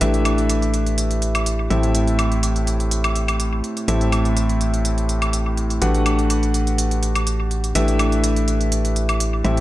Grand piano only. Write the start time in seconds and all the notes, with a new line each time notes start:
0.01 A3 D4 E4 G4 B4 E5
1.70 A2 C4 E4 G4 A4 E5
3.88 A2 C4 E4 G4 A4 E5
5.82 A3 D4 F#4 G4 B4 F#5
7.75 A3 D4 E4 G4 B4 E5
9.44 A2 C4 E4 G4 A4 E5